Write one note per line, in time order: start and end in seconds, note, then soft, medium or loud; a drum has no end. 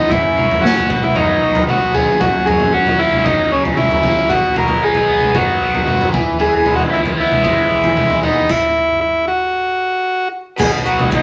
0.00 0.11 E3 medium
0.00 0.11 G#3 medium
0.00 0.11 B3 medium
0.00 0.12 D#4 medium
0.10 0.33 F#1 medium
0.10 0.89 F#2 medium
0.10 0.64 E4 medium
0.10 6.09 F#4 medium
0.10 0.88 A#4 medium
0.10 0.88 C#5 medium
0.10 0.88 A#5 medium
0.10 kick medium
0.10 floor tom medium
0.36 0.58 F#1 medium
0.36 1.15 F#3 medium
0.36 mid tom medium
0.51 floor tom medium
0.61 0.84 F#1 medium
0.61 0.89 C#4 medium
0.61 0.75 F#4 medium
0.65 snare medium
0.76 1.03 F#4 medium
0.76 floor tom medium
0.89 1.11 B1 medium
0.89 1.42 B2 medium
0.89 2.20 B4 medium
0.89 2.19 D#5 medium
0.89 2.19 B5 medium
0.89 kick medium
0.89 mid tom medium
1.03 1.16 E4 medium
1.03 mid tom medium
1.15 1.37 F#2 medium
1.15 1.68 F#3 medium
1.15 1.64 D#4 medium
1.15 floor tom medium
1.41 1.63 B1 medium
1.41 2.21 B2 medium
1.55 floor tom medium
1.66 1.88 B1 medium
1.66 2.46 F#3 medium
1.66 1.96 F#4 medium
1.66 mid tom medium
1.93 2.15 B1 medium
1.93 2.20 B3 medium
1.93 2.21 G#4 medium
1.93 floor tom medium
2.20 2.42 F#1 medium
2.20 3.51 F#2 medium
2.20 2.47 F#4 medium
2.20 4.28 A#4 medium
2.20 4.28 C#5 soft
2.20 4.28 A#5 medium
2.20 kick medium
2.20 floor tom medium
2.46 2.68 F#1 medium
2.46 3.23 F#3 medium
2.46 2.73 G#4 medium
2.46 floor tom medium
2.60 floor tom medium
2.72 3.15 E1 medium
2.72 4.03 C#4 medium
2.72 3.00 F#4 medium
2.87 floor tom medium
2.98 4.01 A#3 medium
2.98 3.17 E4 medium
3.13 mid tom medium
3.19 3.25 E4 medium
3.24 3.47 F#1 medium
3.24 3.75 F#3 medium
3.24 3.52 D#4 medium
3.24 kick medium
3.24 floor tom medium
3.51 3.73 C#2 medium
3.51 4.29 C#3 medium
3.51 3.64 C#4 medium
3.65 floor tom medium
3.76 3.99 F#1 medium
3.76 4.29 F#3 medium
3.76 4.31 E4 medium
3.76 mid tom medium
3.91 floor tom medium
4.02 4.25 C#2 medium
4.02 4.29 A#3 medium
4.02 floor tom medium
4.29 4.52 B1 medium
4.29 5.59 B2 medium
4.29 4.57 F#4 medium
4.29 8.45 B4 medium
4.29 6.11 D#5 medium
4.29 8.45 B5 medium
4.29 kick medium
4.29 floor tom medium
4.55 4.78 B1 medium
4.55 5.33 F#3 medium
4.55 4.84 A#4 medium
4.55 floor tom medium
4.68 floor tom medium
4.82 5.26 B1 medium
4.82 6.13 D#4 medium
4.82 5.37 G#4 medium
4.95 floor tom medium
5.08 6.13 B3 medium
5.21 mid tom medium
5.34 5.56 F#2 medium
5.34 5.85 F#3 medium
5.34 6.09 F#4 medium
5.34 kick loud
5.34 floor tom medium
5.60 5.82 B1 medium
5.60 6.12 B2 medium
5.74 floor tom medium
5.86 6.09 F#2 medium
5.86 6.13 F#3 medium
5.86 mid tom medium
6.01 floor tom medium
6.12 6.35 E1 medium
6.12 6.38 E3 medium
6.12 8.47 G#4 medium
6.12 8.47 E5 medium
6.12 kick medium
6.12 floor tom medium
6.39 6.61 E1 medium
6.39 7.69 E3 medium
6.39 6.55 G#4 medium
6.39 floor tom medium
6.56 6.75 G#4 medium
6.65 6.87 E1 medium
6.65 7.42 G#3 medium
6.65 floor tom medium
6.76 6.83 F#4 medium
6.76 floor tom medium
6.90 7.34 C#2 medium
6.90 8.22 E4 medium
6.90 7.01 E4 medium
7.05 floor tom medium
7.17 8.22 B3 medium
7.17 8.20 E4 medium
7.32 mid tom medium
7.43 7.66 E1 medium
7.43 7.96 G#3 medium
7.43 kick medium
7.43 floor tom medium
7.70 7.91 B1 medium
7.70 8.49 E3 medium
7.84 floor tom medium
7.95 8.17 E1 medium
7.95 8.49 G#3 medium
7.95 mid tom medium
8.10 floor tom medium
8.22 8.44 E1 medium
8.22 8.49 B3 medium
8.22 8.50 D#4 medium
8.22 floor tom medium
8.49 9.00 E4 medium
8.49 kick medium
8.49 crash medium
9.01 9.26 E4 medium
9.28 10.28 F#4 medium
10.56 10.82 B1 medium
10.56 11.09 B2 medium
10.56 11.22 F#4 medium
10.56 10.71 G#4 medium
10.56 11.22 B4 medium
10.56 11.22 D#5 medium
10.56 11.22 B5 medium
10.56 kick medium
10.56 floor tom medium
10.56 crash medium
10.56 shaker medium
10.85 11.08 B1 medium
10.85 11.22 F#3 medium
10.85 11.10 F#4 medium
10.85 shaker medium
10.99 floor tom medium
10.99 mid tom medium
11.10 11.22 B1 medium
11.10 11.22 B2 medium
11.10 kick loud
11.10 shaker medium
11.14 11.22 D#4 medium